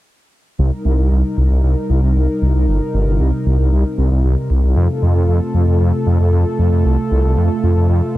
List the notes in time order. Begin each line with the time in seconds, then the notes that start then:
0.59 C2 C3 G3 D#4 A#4
0.85 C2
0.98 C2
1.11 C2
1.37 C2
1.50 C2
1.63 C2
1.89 C2
2.02 C2
2.15 C2
2.42 C2
2.55 C2
2.68 G1
2.94 G1
3.07 G1
3.20 C2
3.46 C2
3.59 C2
3.72 C2
3.98 C2
4.11 C2
4.24 C2
4.50 C2
4.63 C2
4.76 F2 A3 F4 A4
5.02 F2
5.15 F2
5.28 F2
5.54 F2
5.67 F2
5.80 F2
6.06 F2
6.20 F2
6.32 F2
6.59 F2
6.72 F2
6.85 C2
7.11 C2
7.24 C2
7.37 F2
7.63 F2
7.76 F2
7.89 F2